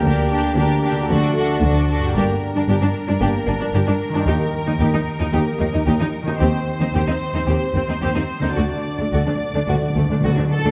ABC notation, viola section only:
X:1
M:4/4
L:1/16
Q:1/4=113
K:Gm
V:1 name="Viola section"
D2 D2 D2 D2 D2 D2 D2 D2 | D z2 D D D z D D z D D D D z D | E z2 E E E z E E z E E E E z E | C z2 C C C z C C z C C C C z C |
A, z2 A, A, A, z A, A, z A, A, A, A, z A, |]